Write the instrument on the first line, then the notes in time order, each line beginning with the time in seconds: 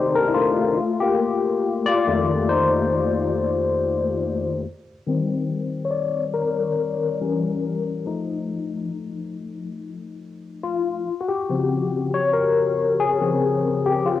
tine electric piano
Already playing: C3 D#3 A3 D#4 G4 C5 D5 D#5
0.15 D4 A#4
0.28 E4
0.34 A3 F4
1.00 A#3 G4
1.86 F4 D5
2.07 F2 D#3 A3
2.49 D#4 C5
5.07 D#3 G3 C4
5.85 C#5
5.91 D5
6.34 A#4
7.21 E3 G3 C#4
8.06 F3 A3 D#4
10.63 F4
11.21 F#4
11.28 G4
11.49 C#3 F3 C4
12.14 C#5
12.33 A#4
13.00 G#4
13.21 C#3 F3 C4
13.86 G4
14.06 F4